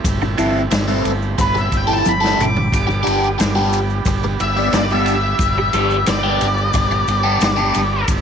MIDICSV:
0, 0, Header, 1, 7, 480
1, 0, Start_track
1, 0, Key_signature, 1, "major"
1, 0, Tempo, 668896
1, 35, Time_signature, 4, 2, 24, 8
1, 5892, End_track
2, 0, Start_track
2, 0, Title_t, "Lead electric guitar"
2, 0, Program_c, 0, 29
2, 1011, Note_on_c, 0, 71, 100
2, 1120, Note_off_c, 0, 71, 0
2, 1136, Note_on_c, 0, 76, 77
2, 1243, Note_off_c, 0, 76, 0
2, 1272, Note_on_c, 0, 79, 96
2, 1387, Note_off_c, 0, 79, 0
2, 1387, Note_on_c, 0, 81, 87
2, 1488, Note_off_c, 0, 81, 0
2, 1497, Note_on_c, 0, 83, 99
2, 1720, Note_off_c, 0, 83, 0
2, 1738, Note_on_c, 0, 86, 100
2, 2659, Note_off_c, 0, 86, 0
2, 3163, Note_on_c, 0, 76, 99
2, 3392, Note_off_c, 0, 76, 0
2, 3406, Note_on_c, 0, 74, 81
2, 3518, Note_off_c, 0, 74, 0
2, 3533, Note_on_c, 0, 76, 91
2, 4339, Note_off_c, 0, 76, 0
2, 4379, Note_on_c, 0, 74, 111
2, 5778, Note_off_c, 0, 74, 0
2, 5892, End_track
3, 0, Start_track
3, 0, Title_t, "Overdriven electric guitar"
3, 0, Program_c, 1, 29
3, 272, Note_on_c, 1, 52, 83
3, 277, Note_on_c, 1, 60, 83
3, 279, Note_on_c, 1, 64, 103
3, 279, Note_on_c, 1, 69, 86
3, 430, Note_off_c, 1, 52, 0
3, 433, Note_off_c, 1, 60, 0
3, 433, Note_off_c, 1, 64, 0
3, 434, Note_off_c, 1, 69, 0
3, 631, Note_on_c, 1, 64, 66
3, 631, Note_on_c, 1, 69, 78
3, 637, Note_on_c, 1, 52, 60
3, 637, Note_on_c, 1, 60, 78
3, 789, Note_off_c, 1, 69, 0
3, 790, Note_off_c, 1, 64, 0
3, 792, Note_off_c, 1, 60, 0
3, 793, Note_off_c, 1, 52, 0
3, 1345, Note_on_c, 1, 64, 74
3, 1345, Note_on_c, 1, 69, 78
3, 1353, Note_on_c, 1, 60, 68
3, 1354, Note_on_c, 1, 52, 64
3, 1507, Note_off_c, 1, 64, 0
3, 1507, Note_off_c, 1, 69, 0
3, 1510, Note_off_c, 1, 60, 0
3, 1511, Note_off_c, 1, 52, 0
3, 1583, Note_on_c, 1, 69, 80
3, 1589, Note_on_c, 1, 60, 73
3, 1591, Note_on_c, 1, 64, 78
3, 1594, Note_on_c, 1, 52, 82
3, 1746, Note_off_c, 1, 69, 0
3, 1749, Note_off_c, 1, 60, 0
3, 1749, Note_off_c, 1, 64, 0
3, 1751, Note_off_c, 1, 52, 0
3, 2177, Note_on_c, 1, 55, 76
3, 2177, Note_on_c, 1, 59, 89
3, 2180, Note_on_c, 1, 62, 88
3, 2188, Note_on_c, 1, 67, 86
3, 2342, Note_off_c, 1, 55, 0
3, 2343, Note_off_c, 1, 59, 0
3, 2344, Note_off_c, 1, 62, 0
3, 2348, Note_off_c, 1, 67, 0
3, 2550, Note_on_c, 1, 67, 76
3, 2553, Note_on_c, 1, 62, 70
3, 2554, Note_on_c, 1, 59, 72
3, 2556, Note_on_c, 1, 55, 62
3, 2709, Note_off_c, 1, 67, 0
3, 2711, Note_off_c, 1, 59, 0
3, 2711, Note_off_c, 1, 62, 0
3, 2712, Note_off_c, 1, 55, 0
3, 3280, Note_on_c, 1, 67, 75
3, 3289, Note_on_c, 1, 62, 78
3, 3291, Note_on_c, 1, 59, 66
3, 3292, Note_on_c, 1, 55, 62
3, 3434, Note_off_c, 1, 67, 0
3, 3439, Note_off_c, 1, 59, 0
3, 3439, Note_off_c, 1, 62, 0
3, 3440, Note_off_c, 1, 55, 0
3, 3529, Note_on_c, 1, 67, 92
3, 3534, Note_on_c, 1, 59, 73
3, 3538, Note_on_c, 1, 62, 77
3, 3539, Note_on_c, 1, 55, 68
3, 3678, Note_off_c, 1, 67, 0
3, 3681, Note_off_c, 1, 59, 0
3, 3683, Note_off_c, 1, 55, 0
3, 3683, Note_off_c, 1, 62, 0
3, 4119, Note_on_c, 1, 55, 92
3, 4123, Note_on_c, 1, 62, 93
3, 4124, Note_on_c, 1, 59, 87
3, 4124, Note_on_c, 1, 67, 96
3, 4273, Note_off_c, 1, 55, 0
3, 4275, Note_off_c, 1, 62, 0
3, 4276, Note_off_c, 1, 59, 0
3, 4276, Note_off_c, 1, 67, 0
3, 4474, Note_on_c, 1, 67, 83
3, 4478, Note_on_c, 1, 62, 70
3, 4479, Note_on_c, 1, 55, 74
3, 4479, Note_on_c, 1, 59, 64
3, 4631, Note_off_c, 1, 67, 0
3, 4633, Note_off_c, 1, 55, 0
3, 4633, Note_off_c, 1, 59, 0
3, 4633, Note_off_c, 1, 62, 0
3, 5192, Note_on_c, 1, 67, 73
3, 5194, Note_on_c, 1, 62, 79
3, 5200, Note_on_c, 1, 59, 71
3, 5204, Note_on_c, 1, 55, 62
3, 5349, Note_off_c, 1, 67, 0
3, 5351, Note_off_c, 1, 62, 0
3, 5354, Note_off_c, 1, 59, 0
3, 5355, Note_off_c, 1, 55, 0
3, 5429, Note_on_c, 1, 67, 91
3, 5437, Note_on_c, 1, 62, 83
3, 5439, Note_on_c, 1, 59, 81
3, 5444, Note_on_c, 1, 55, 67
3, 5588, Note_off_c, 1, 67, 0
3, 5592, Note_off_c, 1, 62, 0
3, 5593, Note_off_c, 1, 59, 0
3, 5595, Note_off_c, 1, 55, 0
3, 5892, End_track
4, 0, Start_track
4, 0, Title_t, "Transistor combo organ"
4, 0, Program_c, 2, 18
4, 0, Note_on_c, 2, 57, 67
4, 0, Note_on_c, 2, 60, 64
4, 0, Note_on_c, 2, 64, 68
4, 0, Note_on_c, 2, 67, 68
4, 1927, Note_off_c, 2, 64, 0
4, 1928, Note_off_c, 2, 57, 0
4, 1928, Note_off_c, 2, 60, 0
4, 1930, Note_off_c, 2, 67, 0
4, 1942, Note_on_c, 2, 67, 78
4, 1949, Note_on_c, 2, 55, 66
4, 1949, Note_on_c, 2, 62, 61
4, 1951, Note_on_c, 2, 59, 62
4, 5759, Note_off_c, 2, 67, 0
4, 5763, Note_off_c, 2, 55, 0
4, 5763, Note_off_c, 2, 62, 0
4, 5764, Note_off_c, 2, 59, 0
4, 5800, Note_on_c, 2, 60, 61
4, 5805, Note_on_c, 2, 57, 70
4, 5805, Note_on_c, 2, 67, 75
4, 5807, Note_on_c, 2, 64, 58
4, 5892, Note_off_c, 2, 57, 0
4, 5892, Note_off_c, 2, 60, 0
4, 5892, Note_off_c, 2, 64, 0
4, 5892, Note_off_c, 2, 67, 0
4, 5892, End_track
5, 0, Start_track
5, 0, Title_t, "Fingered electric bass"
5, 0, Program_c, 3, 33
5, 34, Note_on_c, 3, 31, 96
5, 249, Note_off_c, 3, 31, 0
5, 277, Note_on_c, 3, 31, 87
5, 491, Note_off_c, 3, 31, 0
5, 513, Note_on_c, 3, 31, 92
5, 729, Note_off_c, 3, 31, 0
5, 754, Note_on_c, 3, 31, 86
5, 969, Note_off_c, 3, 31, 0
5, 996, Note_on_c, 3, 31, 91
5, 1210, Note_off_c, 3, 31, 0
5, 1236, Note_on_c, 3, 31, 90
5, 1451, Note_off_c, 3, 31, 0
5, 1480, Note_on_c, 3, 31, 90
5, 1693, Note_off_c, 3, 31, 0
5, 1713, Note_on_c, 3, 31, 89
5, 1929, Note_off_c, 3, 31, 0
5, 1958, Note_on_c, 3, 31, 96
5, 2172, Note_off_c, 3, 31, 0
5, 2202, Note_on_c, 3, 31, 86
5, 2414, Note_off_c, 3, 31, 0
5, 2440, Note_on_c, 3, 31, 94
5, 2867, Note_off_c, 3, 31, 0
5, 2909, Note_on_c, 3, 31, 100
5, 3126, Note_off_c, 3, 31, 0
5, 3161, Note_on_c, 3, 31, 89
5, 3373, Note_off_c, 3, 31, 0
5, 3393, Note_on_c, 3, 31, 93
5, 3823, Note_off_c, 3, 31, 0
5, 3870, Note_on_c, 3, 31, 88
5, 4087, Note_off_c, 3, 31, 0
5, 4114, Note_on_c, 3, 31, 91
5, 4329, Note_off_c, 3, 31, 0
5, 4363, Note_on_c, 3, 31, 89
5, 4574, Note_off_c, 3, 31, 0
5, 4605, Note_on_c, 3, 31, 98
5, 4815, Note_off_c, 3, 31, 0
5, 4841, Note_on_c, 3, 31, 92
5, 5053, Note_off_c, 3, 31, 0
5, 5079, Note_on_c, 3, 31, 96
5, 5292, Note_off_c, 3, 31, 0
5, 5318, Note_on_c, 3, 31, 86
5, 5531, Note_off_c, 3, 31, 0
5, 5568, Note_on_c, 3, 31, 93
5, 5777, Note_off_c, 3, 31, 0
5, 5801, Note_on_c, 3, 31, 87
5, 5892, Note_off_c, 3, 31, 0
5, 5892, End_track
6, 0, Start_track
6, 0, Title_t, "Muted overdriven electric guitar strokes"
6, 160, Note_on_c, 9, 29, 46
6, 232, Note_off_c, 9, 29, 0
6, 508, Note_on_c, 9, 29, 49
6, 580, Note_off_c, 9, 29, 0
6, 994, Note_on_c, 9, 29, 50
6, 1066, Note_off_c, 9, 29, 0
6, 1114, Note_on_c, 9, 29, 45
6, 1186, Note_off_c, 9, 29, 0
6, 2061, Note_on_c, 9, 29, 46
6, 2132, Note_off_c, 9, 29, 0
6, 2429, Note_on_c, 9, 29, 49
6, 2500, Note_off_c, 9, 29, 0
6, 2926, Note_on_c, 9, 29, 50
6, 2997, Note_off_c, 9, 29, 0
6, 3045, Note_on_c, 9, 29, 48
6, 3117, Note_off_c, 9, 29, 0
6, 4004, Note_on_c, 9, 29, 43
6, 4076, Note_off_c, 9, 29, 0
6, 4367, Note_on_c, 9, 29, 51
6, 4438, Note_off_c, 9, 29, 0
6, 4839, Note_on_c, 9, 29, 45
6, 4910, Note_off_c, 9, 29, 0
6, 4961, Note_on_c, 9, 29, 50
6, 5033, Note_off_c, 9, 29, 0
6, 5892, End_track
7, 0, Start_track
7, 0, Title_t, "Drums"
7, 32, Note_on_c, 9, 36, 114
7, 33, Note_on_c, 9, 51, 100
7, 36, Note_on_c, 9, 70, 105
7, 104, Note_off_c, 9, 36, 0
7, 105, Note_off_c, 9, 51, 0
7, 108, Note_off_c, 9, 70, 0
7, 159, Note_on_c, 9, 70, 30
7, 231, Note_off_c, 9, 70, 0
7, 272, Note_on_c, 9, 51, 68
7, 277, Note_on_c, 9, 70, 76
7, 344, Note_off_c, 9, 51, 0
7, 349, Note_off_c, 9, 70, 0
7, 511, Note_on_c, 9, 51, 101
7, 511, Note_on_c, 9, 70, 101
7, 520, Note_on_c, 9, 38, 116
7, 583, Note_off_c, 9, 51, 0
7, 583, Note_off_c, 9, 70, 0
7, 592, Note_off_c, 9, 38, 0
7, 635, Note_on_c, 9, 70, 31
7, 707, Note_off_c, 9, 70, 0
7, 754, Note_on_c, 9, 51, 63
7, 754, Note_on_c, 9, 70, 68
7, 826, Note_off_c, 9, 51, 0
7, 826, Note_off_c, 9, 70, 0
7, 877, Note_on_c, 9, 70, 28
7, 948, Note_off_c, 9, 70, 0
7, 992, Note_on_c, 9, 51, 91
7, 993, Note_on_c, 9, 36, 104
7, 995, Note_on_c, 9, 70, 99
7, 1064, Note_off_c, 9, 51, 0
7, 1065, Note_off_c, 9, 36, 0
7, 1066, Note_off_c, 9, 70, 0
7, 1125, Note_on_c, 9, 70, 32
7, 1197, Note_off_c, 9, 70, 0
7, 1233, Note_on_c, 9, 36, 70
7, 1235, Note_on_c, 9, 51, 62
7, 1240, Note_on_c, 9, 70, 71
7, 1305, Note_off_c, 9, 36, 0
7, 1306, Note_off_c, 9, 51, 0
7, 1312, Note_off_c, 9, 70, 0
7, 1473, Note_on_c, 9, 70, 98
7, 1478, Note_on_c, 9, 48, 59
7, 1544, Note_off_c, 9, 70, 0
7, 1550, Note_off_c, 9, 48, 0
7, 1600, Note_on_c, 9, 70, 27
7, 1612, Note_on_c, 9, 38, 66
7, 1672, Note_off_c, 9, 70, 0
7, 1683, Note_off_c, 9, 38, 0
7, 1726, Note_on_c, 9, 45, 84
7, 1726, Note_on_c, 9, 70, 76
7, 1798, Note_off_c, 9, 45, 0
7, 1798, Note_off_c, 9, 70, 0
7, 1841, Note_on_c, 9, 43, 85
7, 1913, Note_off_c, 9, 43, 0
7, 1955, Note_on_c, 9, 36, 103
7, 1961, Note_on_c, 9, 51, 92
7, 1962, Note_on_c, 9, 70, 97
7, 2027, Note_off_c, 9, 36, 0
7, 2033, Note_off_c, 9, 51, 0
7, 2034, Note_off_c, 9, 70, 0
7, 2085, Note_on_c, 9, 70, 30
7, 2156, Note_off_c, 9, 70, 0
7, 2200, Note_on_c, 9, 70, 74
7, 2201, Note_on_c, 9, 51, 71
7, 2272, Note_off_c, 9, 51, 0
7, 2272, Note_off_c, 9, 70, 0
7, 2324, Note_on_c, 9, 70, 31
7, 2395, Note_off_c, 9, 70, 0
7, 2437, Note_on_c, 9, 51, 89
7, 2443, Note_on_c, 9, 70, 97
7, 2446, Note_on_c, 9, 38, 112
7, 2509, Note_off_c, 9, 51, 0
7, 2514, Note_off_c, 9, 70, 0
7, 2518, Note_off_c, 9, 38, 0
7, 2674, Note_on_c, 9, 70, 73
7, 2679, Note_on_c, 9, 51, 55
7, 2746, Note_off_c, 9, 70, 0
7, 2751, Note_off_c, 9, 51, 0
7, 2798, Note_on_c, 9, 70, 27
7, 2870, Note_off_c, 9, 70, 0
7, 2909, Note_on_c, 9, 70, 101
7, 2911, Note_on_c, 9, 36, 98
7, 2913, Note_on_c, 9, 51, 85
7, 2980, Note_off_c, 9, 70, 0
7, 2982, Note_off_c, 9, 36, 0
7, 2985, Note_off_c, 9, 51, 0
7, 3035, Note_on_c, 9, 70, 30
7, 3107, Note_off_c, 9, 70, 0
7, 3155, Note_on_c, 9, 70, 66
7, 3156, Note_on_c, 9, 51, 64
7, 3227, Note_off_c, 9, 70, 0
7, 3228, Note_off_c, 9, 51, 0
7, 3391, Note_on_c, 9, 51, 85
7, 3398, Note_on_c, 9, 70, 99
7, 3400, Note_on_c, 9, 38, 106
7, 3463, Note_off_c, 9, 51, 0
7, 3470, Note_off_c, 9, 70, 0
7, 3472, Note_off_c, 9, 38, 0
7, 3519, Note_on_c, 9, 70, 28
7, 3590, Note_off_c, 9, 70, 0
7, 3629, Note_on_c, 9, 51, 74
7, 3641, Note_on_c, 9, 70, 76
7, 3701, Note_off_c, 9, 51, 0
7, 3713, Note_off_c, 9, 70, 0
7, 3865, Note_on_c, 9, 51, 87
7, 3870, Note_on_c, 9, 36, 121
7, 3878, Note_on_c, 9, 70, 103
7, 3937, Note_off_c, 9, 51, 0
7, 3941, Note_off_c, 9, 36, 0
7, 3949, Note_off_c, 9, 70, 0
7, 4111, Note_on_c, 9, 51, 69
7, 4114, Note_on_c, 9, 70, 67
7, 4183, Note_off_c, 9, 51, 0
7, 4186, Note_off_c, 9, 70, 0
7, 4238, Note_on_c, 9, 70, 30
7, 4309, Note_off_c, 9, 70, 0
7, 4351, Note_on_c, 9, 51, 99
7, 4354, Note_on_c, 9, 70, 101
7, 4359, Note_on_c, 9, 38, 107
7, 4422, Note_off_c, 9, 51, 0
7, 4426, Note_off_c, 9, 70, 0
7, 4431, Note_off_c, 9, 38, 0
7, 4597, Note_on_c, 9, 70, 77
7, 4599, Note_on_c, 9, 51, 66
7, 4669, Note_off_c, 9, 70, 0
7, 4670, Note_off_c, 9, 51, 0
7, 4719, Note_on_c, 9, 70, 29
7, 4791, Note_off_c, 9, 70, 0
7, 4832, Note_on_c, 9, 70, 104
7, 4837, Note_on_c, 9, 36, 104
7, 4842, Note_on_c, 9, 51, 91
7, 4904, Note_off_c, 9, 70, 0
7, 4909, Note_off_c, 9, 36, 0
7, 4914, Note_off_c, 9, 51, 0
7, 4959, Note_on_c, 9, 70, 32
7, 5031, Note_off_c, 9, 70, 0
7, 5076, Note_on_c, 9, 70, 73
7, 5083, Note_on_c, 9, 51, 67
7, 5148, Note_off_c, 9, 70, 0
7, 5154, Note_off_c, 9, 51, 0
7, 5315, Note_on_c, 9, 70, 113
7, 5321, Note_on_c, 9, 51, 102
7, 5330, Note_on_c, 9, 38, 105
7, 5387, Note_off_c, 9, 70, 0
7, 5393, Note_off_c, 9, 51, 0
7, 5401, Note_off_c, 9, 38, 0
7, 5435, Note_on_c, 9, 70, 31
7, 5507, Note_off_c, 9, 70, 0
7, 5557, Note_on_c, 9, 51, 77
7, 5557, Note_on_c, 9, 70, 82
7, 5629, Note_off_c, 9, 51, 0
7, 5629, Note_off_c, 9, 70, 0
7, 5796, Note_on_c, 9, 51, 100
7, 5797, Note_on_c, 9, 70, 107
7, 5799, Note_on_c, 9, 36, 115
7, 5868, Note_off_c, 9, 51, 0
7, 5869, Note_off_c, 9, 70, 0
7, 5871, Note_off_c, 9, 36, 0
7, 5892, End_track
0, 0, End_of_file